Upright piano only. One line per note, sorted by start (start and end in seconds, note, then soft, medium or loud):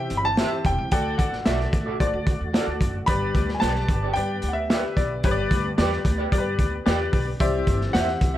0.00 0.25 G4 medium
0.00 0.25 C5 medium
0.00 0.25 E5 medium
0.38 0.79 G4 medium
0.38 0.79 C5 medium
0.38 0.79 E5 medium
0.92 1.69 D3 medium
0.92 1.33 F#4 loud
0.92 1.33 A4 medium
0.92 1.33 D5 loud
1.46 1.87 F#4 medium
1.46 1.87 A4 medium
1.46 1.87 D5 medium
2.00 2.41 F#4 medium
2.00 2.41 A4 medium
2.00 2.07 C5 medium
2.07 2.44 D5 medium
2.54 2.61 E4 medium
2.54 2.95 A4 medium
2.54 2.95 D5 medium
2.61 2.98 F#4 medium
3.09 3.85 G2 medium
3.09 3.49 G4 loud
3.09 3.49 B4 medium
3.09 3.49 D5 loud
3.62 4.02 G4 medium
3.62 4.02 B4 medium
3.62 3.68 C5 medium
3.68 4.06 D5 medium
4.16 4.57 G4 medium
4.16 4.57 B4 medium
4.16 4.57 D5 medium
4.70 5.11 G4 medium
4.70 4.77 A#4 medium
4.70 5.11 E5 medium
4.76 5.14 B4 medium
5.25 6.01 G2 medium
5.25 5.65 G4 loud
5.25 5.65 B4 loud
5.25 5.31 C#5 medium
5.31 5.68 D5 loud
5.78 6.18 G4 medium
5.78 6.18 B4 medium
5.78 6.19 D5 medium
6.32 6.73 G4 medium
6.32 6.39 A#4 medium
6.32 6.73 D5 loud
6.38 6.76 B4 medium
6.86 7.27 G4 loud
6.86 7.27 B4 medium
6.86 7.27 D5 medium
7.40 8.17 C3 medium
7.40 7.81 G4 loud
7.40 7.81 C5 medium
7.40 7.81 E5 loud
7.94 8.35 G4 medium
7.94 8.35 C5 medium
7.94 8.01 D5 medium
8.01 8.38 E5 medium